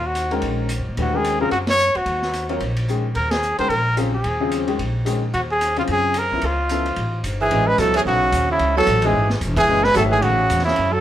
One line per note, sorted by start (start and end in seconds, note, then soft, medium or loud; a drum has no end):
0.00 0.40 D#2 medium
0.06 0.32 F#4 medium
0.15 hi-hat pedal soft
0.15 ride medium
0.31 0.67 D#3 medium
0.31 0.67 G#3 medium
0.31 0.67 C#4 medium
0.31 0.68 F#4 medium
0.31 0.68 A#4 medium
0.31 ride soft
0.42 0.76 A#1 medium
0.42 ride soft
0.69 hi-hat pedal medium
0.69 ride medium
0.79 0.87 F#2 medium
0.89 0.97 A#2 medium
0.97 1.49 D#2 medium
0.97 1.12 E3 soft
0.97 1.12 A3 soft
0.97 1.12 D4 soft
0.97 1.12 G4 soft
0.97 1.12 B4 medium
0.97 ride medium
1.01 1.17 F#4 medium
1.13 1.37 D#3 soft
1.13 1.37 G#3 soft
1.13 1.37 C#4 soft
1.13 1.37 F#4 soft
1.13 1.40 G#4 medium
1.13 1.38 A#4 medium
1.24 hi-hat pedal soft
1.24 ride medium
1.40 1.50 C#3 medium
1.40 1.50 F#3 medium
1.40 1.51 C4 medium
1.40 1.51 F4 medium
1.40 1.51 G#4 medium
1.40 1.51 A#4 medium
1.51 1.92 F#2 medium
1.51 1.59 F#4 medium
1.51 ride soft
1.67 1.98 C#5 medium
1.67 snare medium
1.67 ride medium
1.79 hi-hat pedal medium
1.95 2.05 D2 medium
1.95 2.50 F#4 medium
1.95 ride soft
2.06 2.58 D#2 medium
2.06 ride soft
2.22 snare soft
2.33 hi-hat pedal soft
2.33 ride medium
2.49 2.59 F#3 medium
2.49 2.59 C4 medium
2.49 2.59 F4 medium
2.49 2.60 A#4 soft
2.49 2.60 C#5 medium
2.49 ride soft
2.60 3.12 A#1 medium
2.60 ride soft
2.76 ride medium
2.88 3.03 D#3 soft
2.88 3.03 G#3 soft
2.88 3.03 C#4 soft
2.88 3.03 F#4 soft
2.88 3.03 G#4 medium
2.88 hi-hat pedal soft
3.15 3.56 D#2 medium
3.15 3.33 A#4 medium
3.15 ride soft
3.31 3.58 G#4 medium
3.31 snare medium
3.31 ride medium
3.42 hi-hat pedal soft
3.58 3.69 D2 medium
3.58 3.69 D#3 medium
3.58 3.69 G#3 soft
3.58 3.69 C#4 soft
3.58 3.69 F#4 soft
3.58 3.69 A#4 medium
3.58 3.71 C5 medium
3.58 ride soft
3.69 4.21 A#1 medium
3.69 3.97 A#4 medium
3.69 ride soft
3.97 4.11 C#3 medium
3.97 4.11 F#3 medium
3.97 4.11 C4 medium
3.97 4.11 F4 medium
3.97 4.12 G#4 medium
3.97 hi-hat pedal soft
3.97 ride medium
4.14 4.64 G#4 medium
4.24 4.76 D#2 medium
4.24 ride medium
4.40 4.66 C#3 medium
4.40 4.66 F#3 medium
4.40 4.66 C4 medium
4.40 4.66 F4 medium
4.40 4.66 G#4 medium
4.51 hi-hat pedal soft
4.51 ride medium
4.67 4.77 D#3 medium
4.67 4.77 G#3 medium
4.67 4.78 C#4 medium
4.67 4.77 F#4 medium
4.67 4.77 G#4 medium
4.67 ride soft
4.79 5.30 A#1 medium
4.79 ride medium
5.05 5.20 D#3 medium
5.05 5.20 G#3 soft
5.05 5.20 C#4 soft
5.05 5.20 F#4 soft
5.05 5.20 G#4 medium
5.05 hi-hat pedal soft
5.05 ride medium
5.34 5.85 D#2 medium
5.34 5.41 F#4 medium
5.34 ride soft
5.51 5.76 G#4 medium
5.61 hi-hat pedal medium
5.61 ride medium
5.76 6.13 C#3 medium
5.76 6.13 F#3 medium
5.76 6.13 C4 medium
5.76 6.13 F4 medium
5.76 5.84 F4 medium
5.76 6.13 G#4 medium
5.76 ride soft
5.87 6.28 F#2 medium
5.87 6.20 G#4 medium
5.87 ride soft
6.14 hi-hat pedal medium
6.14 ride medium
6.18 6.47 A#4 medium
6.31 6.42 C2 medium
6.31 6.42 F3 soft
6.31 6.42 B3 soft
6.31 6.42 C#4 soft
6.31 6.42 E4 medium
6.31 6.42 B4 medium
6.41 6.94 C#2 medium
6.41 ride medium
6.45 7.25 F4 medium
6.69 6.84 F3 medium
6.69 6.84 B3 soft
6.69 6.85 C#4 medium
6.69 6.85 E4 medium
6.69 6.85 A4 medium
6.69 hi-hat pedal soft
6.69 ride medium
6.85 ride soft
6.96 7.22 A1 medium
6.96 ride soft
7.23 7.49 G1 medium
7.23 hi-hat pedal soft
7.23 ride medium
7.41 7.70 E3 medium
7.41 7.68 G#4 medium
7.51 7.77 A1 medium
7.51 7.77 G#3 soft
7.51 7.77 C#4 soft
7.51 7.78 F#4 soft
7.51 7.78 B4 soft
7.51 7.78 D#5 medium
7.51 ride medium
7.67 7.80 G#3 medium
7.67 7.81 B4 medium
7.78 8.05 C#2 medium
7.78 7.94 F#3 medium
7.78 8.19 F#3 medium
7.78 8.19 B3 medium
7.78 8.19 E4 medium
7.78 7.95 A4 medium
7.78 8.19 A4 medium
7.78 8.19 C#5 medium
7.78 hi-hat pedal soft
7.78 ride medium
7.94 8.00 E3 medium
7.94 8.01 G#4 medium
7.94 ride medium
8.05 8.32 B1 medium
8.05 8.46 C#3 medium
8.05 8.47 F#4 medium
8.32 8.59 D#2 medium
8.32 hi-hat pedal medium
8.32 ride medium
8.50 8.75 C#3 medium
8.50 8.76 E4 medium
8.59 8.86 C#2 medium
8.59 ride medium
8.76 8.86 F#3 medium
8.76 9.05 F#3 medium
8.76 8.86 B3 medium
8.76 8.86 E4 medium
8.76 8.86 A4 medium
8.76 9.08 A4 medium
8.76 8.86 C#5 medium
8.87 9.13 A1 medium
8.87 hi-hat pedal medium
8.87 ride medium
9.02 9.31 E3 medium
9.02 9.13 G#3 medium
9.02 9.14 C#4 medium
9.02 9.14 F#4 medium
9.02 9.14 B4 medium
9.02 9.14 D#5 medium
9.02 ride medium
9.06 9.32 G#4 medium
9.13 9.40 G#1 medium
9.30 snare medium
9.41 9.68 E1 medium
9.41 hi-hat pedal medium
9.41 ride medium
9.56 9.86 E3 medium
9.56 9.85 G#4 medium
9.56 kick medium
9.56 ride medium
9.68 9.95 F#1 medium
9.68 9.83 G#3 medium
9.68 9.83 C#4 medium
9.68 9.83 F#4 medium
9.68 9.83 B4 medium
9.68 9.83 D#5 medium
9.84 9.94 G#3 medium
9.84 9.95 B4 medium
9.84 snare soft
9.94 10.22 G#1 medium
9.94 10.36 D#3 medium
9.94 10.02 F#3 medium
9.94 10.36 A3 medium
9.94 10.36 G#4 medium
9.94 10.04 A4 medium
9.94 10.36 C#5 medium
9.94 10.36 E5 medium
9.94 hi-hat pedal medium
9.94 ride medium
10.10 10.23 E3 medium
10.10 10.24 G#4 medium
10.22 10.49 A1 medium
10.22 10.64 C#3 medium
10.22 10.64 F#4 medium
10.22 ride medium
10.50 10.77 E2 medium
10.50 hi-hat pedal medium
10.50 ride medium
10.59 snare soft
10.64 10.93 C#3 medium
10.64 10.94 E4 medium
10.64 snare soft
10.76 11.01 F#2 medium
10.76 ride medium
10.92 11.01 F#3 medium
10.92 11.01 A4 medium